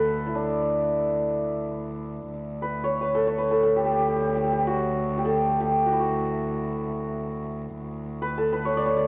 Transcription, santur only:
0.00 2.83 A4 medium
0.00 2.41 B4 medium
0.26 3.74 E4 medium
0.35 2.90 D4 medium
2.62 3.01 B4 medium
2.84 3.27 C#5 medium
3.01 3.38 B4 medium
3.15 3.51 A4 medium
3.27 5.82 C#5 medium
3.38 6.11 B4 medium
3.51 3.63 A4 medium
3.63 5.24 A4 medium
3.76 3.85 G4 medium
3.85 3.92 G4 medium
3.92 3.99 G4 medium
4.00 4.07 G4 soft
4.08 4.15 G4 medium
4.16 4.20 G4 soft
4.21 4.29 G4 soft
4.29 4.36 G4 soft
4.37 4.44 G4 medium
4.44 4.52 G4 soft
4.52 4.73 G4 medium
4.67 5.24 F#4 medium
5.18 5.60 G4 medium
5.25 8.17 A4 medium
5.60 5.92 G4 medium
5.86 6.00 F#4 medium
5.92 9.07 E4 medium
6.00 9.07 F#4 medium
8.22 8.52 B4 medium
8.38 9.07 A4 medium
8.52 9.07 B4 medium
8.65 8.83 C#5 medium
8.77 8.92 D5 medium
8.86 9.03 C#5 medium
8.97 9.07 D5 medium

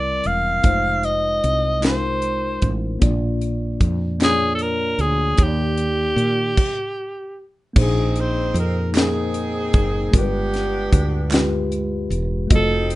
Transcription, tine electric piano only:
0.00 0.60 C3 soft
0.00 0.33 G3 medium
0.00 0.34 C4 medium
0.00 0.35 E4 medium
0.00 0.39 A#4 medium
0.63 1.52 G#3 medium
0.63 1.53 D#4 medium
0.63 1.53 F4 medium
0.63 1.54 C5 medium
1.80 2.71 G#3 medium
1.80 2.71 D#4 medium
1.80 2.72 F4 medium
1.84 1.90 A#4 soft
1.91 2.76 C5 medium
2.99 4.16 A#2 medium
2.99 3.89 A#3 medium
2.99 3.90 D4 medium
2.99 3.91 F4 medium
2.99 3.91 D5 medium
4.19 5.09 A#3 medium
4.19 5.09 D4 medium
4.19 5.10 F4 medium
4.23 4.28 C#5 medium
4.30 5.14 D5 medium
5.37 6.53 D#3 medium
5.37 6.27 A#3 medium
5.37 6.28 D#4 medium
5.37 6.28 G4 medium
5.37 5.46 C#5 medium
5.47 6.32 D5 medium
7.74 8.91 A#2 soft
7.74 8.64 A#3 medium
7.74 8.65 D#4 medium
7.74 8.66 G#4 medium
7.78 8.66 C5 medium
8.92 9.83 A#3 medium
8.92 9.83 D#4 medium
8.92 9.84 G#4 medium
8.96 9.85 A#4 medium
10.11 11.28 G2 soft
10.11 11.01 G#3 medium
10.11 11.02 F4 medium
10.11 11.03 G4 medium
10.11 10.21 A#4 medium
10.21 11.06 B4 medium
11.31 12.21 G#3 medium
11.31 12.21 F4 medium
11.31 12.22 G4 medium
11.31 12.22 B4 medium
12.47 12.95 A3 medium
12.47 12.95 F4 medium
12.47 12.95 F#4 medium
12.52 12.95 D#5 medium

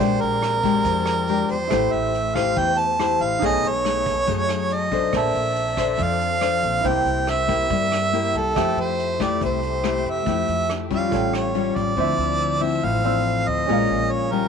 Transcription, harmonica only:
0.00 0.22 C5 medium
0.21 1.52 A#4 loud
1.51 1.94 C5 medium
1.93 2.36 E5 medium
2.35 2.60 F5 medium
2.58 2.79 G5 loud
2.78 3.24 A5 medium
3.22 3.47 F5 medium
3.45 3.70 D#5 medium
3.68 4.75 C#5 loud
4.74 5.15 D#5 medium
5.17 6.04 E5 medium
6.03 6.89 F5 medium
6.87 7.31 G5 medium
7.29 8.39 E5 medium
8.38 8.81 A4 medium
8.80 9.24 C5 medium
9.22 9.42 D5 medium
9.45 10.11 C5 medium
10.10 10.78 E5 medium
10.95 11.32 F5 medium
11.36 11.77 C#5 medium
11.76 12.64 D5 medium
12.62 12.86 E5 medium
12.85 13.49 F5 medium
13.48 14.13 D#5 medium
14.12 14.33 C#5 medium
14.32 14.48 A#4 medium

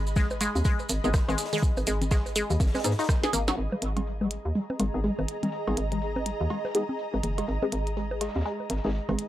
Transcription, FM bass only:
0.00 0.48 G#1 loud
0.55 0.62 D#2 medium
0.89 1.00 G#1 loud
1.04 1.19 G#1 loud
1.28 1.35 G#1 loud
1.77 1.84 G#1 medium
1.87 2.43 G#1 loud
2.50 2.57 D#2 medium
2.60 2.70 G#1 loud
2.84 2.95 G#2 loud
3.33 3.52 G#1 medium
3.58 3.68 G#1 medium
3.82 4.38 G#1 medium
4.45 4.52 D#2 medium
4.80 4.90 G#1 medium
4.94 5.10 G#1 medium
5.19 5.25 G#1 medium
5.68 5.74 G#1 medium
5.77 6.33 G#1 medium
6.41 6.47 D#2 medium
7.14 7.21 G#1 medium
7.24 7.42 F#1 medium
7.48 7.58 G#1 medium
7.72 8.29 G#1 medium
8.36 8.43 D#2 medium
8.70 8.80 G#1 loud
8.85 9.00 G#1 loud
9.09 9.16 G#1 medium

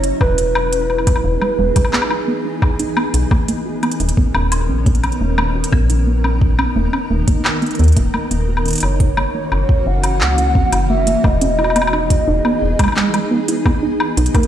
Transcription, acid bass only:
0.04 0.13 C#4 loud
0.21 0.26 F#4 medium
0.38 0.44 C#4 medium
0.55 0.74 D#4 medium
0.90 1.04 D#4 medium
1.07 1.16 B3 medium
1.24 1.38 D#4 medium
1.42 1.51 G#3 medium
1.59 1.73 G#3 medium
1.76 1.81 G#3 medium
1.93 2.02 B3 loud
2.11 2.16 E4 medium
2.28 2.33 B3 medium
2.45 2.64 D#4 medium
2.62 2.71 E4 medium
2.79 2.93 D#4 loud
2.97 3.06 B3 medium
3.14 3.28 D#4 medium
3.31 3.40 A#3 medium
3.48 3.62 A#3 medium
3.66 3.71 F#4 medium
3.83 3.92 B3 loud
4.00 4.06 D#4 medium
4.17 4.23 B3 medium
4.34 4.53 C#4 medium
4.52 4.61 D#4 medium
4.69 4.83 C#4 loud
4.86 4.95 A#3 medium
5.04 5.17 C#4 medium
5.21 5.30 A#3 medium
5.38 5.52 A#3 medium
5.55 5.61 F#4 medium
5.72 5.82 B3 medium
5.90 5.95 D#4 medium
6.07 6.12 B3 medium
6.24 6.43 C#4 medium
6.41 6.51 D#4 medium
6.59 6.72 C#4 loud
6.76 6.85 A#3 medium
6.93 7.07 C#4 medium
7.10 7.20 A#3 medium
7.28 7.41 A#3 medium
7.45 7.50 F#4 medium
7.62 7.71 B3 loud
7.79 7.93 B3 medium
7.97 8.10 A#3 loud
8.14 8.28 A#3 medium
8.31 8.40 B3 loud
8.48 8.62 F#4 loud
8.66 8.84 C#4 medium
9.00 9.09 A#3 medium
9.17 9.31 A#3 medium
9.34 9.40 A#3 medium
9.52 9.61 C#4 loud
9.69 9.74 F#4 medium
9.86 9.92 C#4 medium
10.03 10.22 E4 medium
10.21 10.30 F#4 medium
10.38 10.52 E4 loud
10.55 10.74 C4 medium
10.90 10.99 A#3 medium
11.07 11.21 A#3 medium
11.24 11.30 A#3 medium
11.41 11.51 C#4 loud
11.58 11.64 E4 medium
11.76 11.81 B3 medium
11.93 12.12 D#4 medium
12.10 12.20 E4 medium
12.27 12.41 D#4 loud
12.45 12.63 B3 medium
12.62 12.71 E4 loud
12.79 12.89 G#3 medium
12.96 13.10 G#3 medium
13.14 13.19 G#3 medium
13.31 13.40 B3 loud
13.48 13.54 E4 medium
13.65 13.71 B3 medium
13.83 14.02 D#4 medium
14.00 14.09 E4 medium
14.17 14.31 D#4 loud
14.34 14.47 A#3 medium

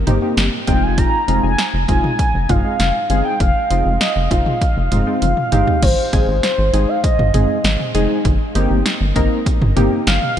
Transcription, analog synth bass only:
0.07 0.19 G1 loud
0.37 0.50 G1 loud
0.68 1.05 F1 loud
1.28 1.41 F1 loud
1.43 1.56 F1 loud
1.74 1.86 F1 medium
1.88 2.01 F1 loud
2.34 2.47 F1 loud
2.50 2.62 F1 loud
2.80 2.92 F1 loud
3.10 3.22 G1 medium
3.40 3.53 F1 loud
3.71 3.83 F1 loud
3.86 3.98 F1 loud
4.16 4.29 F1 loud
4.31 4.43 F1 loud
4.77 4.89 F1 loud
4.92 5.04 F1 loud
5.22 5.35 F1 loud
5.52 5.65 G1 medium
5.82 5.95 G#1 loud
6.13 6.26 G#1 medium
6.28 6.41 G#1 medium
6.58 6.71 G#1 loud
6.73 6.86 G#1 loud
7.19 7.31 G#1 loud
7.34 7.47 G#1 loud
7.64 7.77 G#1 loud
7.95 8.07 F1 medium
8.25 8.38 G1 loud
8.55 8.68 G1 loud
8.70 8.83 G1 medium
9.01 9.13 G1 loud
9.16 9.28 G1 loud
9.62 9.74 G1 loud
9.77 9.89 G1 loud
10.07 10.19 G1 loud

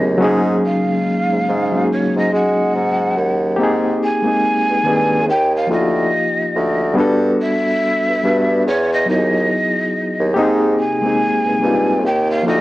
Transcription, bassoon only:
0.00 0.19 D#2 medium
0.21 0.61 G#2 loud
1.32 1.38 G#2 soft
1.48 1.88 G#2 medium
2.16 2.32 G#2 medium
2.32 2.72 G#3 medium
2.75 3.15 G#2 medium
3.17 3.57 D#2 medium
3.59 3.99 G#2 medium
4.69 4.76 G2 soft
4.86 5.30 G2 medium
5.28 5.68 D#2 loud
5.70 6.10 D2 loud
6.55 6.95 D2 medium
6.97 7.37 G2 loud
8.08 8.14 G2 soft
8.24 8.64 G2 medium
8.66 9.06 E2 loud
9.09 9.49 D#2 medium
10.19 10.35 D#2 loud
10.36 10.76 G#2 loud
11.46 11.52 G2 soft
11.63 12.06 G2 medium
12.05 12.45 D#2 loud
12.47 12.61 D2 loud

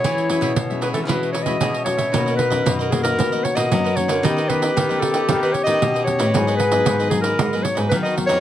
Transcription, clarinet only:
0.00 0.77 C#5 medium
0.82 0.88 B4 medium
0.94 1.00 A4 medium
1.08 1.32 B4 medium
1.33 1.44 C#5 medium
1.43 1.84 D#5 medium
1.84 2.35 C#5 medium
2.36 2.74 B4 medium
2.89 3.02 G#4 medium
3.03 3.45 A#4 loud
3.44 3.57 C#5 medium
3.56 3.98 D#5 loud
3.96 4.26 C#5 medium
4.24 4.50 D#5 medium
4.48 5.01 B4 medium
5.00 5.41 A4 medium
5.42 5.54 B4 medium
5.53 5.63 C#5 medium
5.64 6.03 D#5 loud
6.04 6.55 C#5 loud
6.56 7.07 B4 loud
7.10 7.17 G#4 medium
7.21 7.65 A#4 medium
7.63 7.78 C#5 medium
7.89 7.96 B4 loud
8.03 8.15 D#5 medium
8.27 8.40 C#5 loud

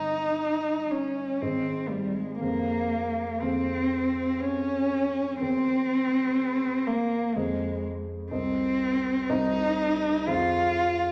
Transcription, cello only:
0.00 0.92 D#4 medium
0.91 1.43 C#4 medium
1.41 1.91 C4 medium
1.90 2.17 G3 medium
2.15 2.39 G#3 soft
2.40 3.43 A#3 medium
3.41 4.42 C4 medium
4.41 5.40 C#4 medium
5.41 6.89 C4 medium
6.87 7.36 A#3 medium
7.35 7.83 G#3 medium
8.31 9.31 C4 medium
9.29 10.29 D#4 medium
10.28 11.12 F4 medium

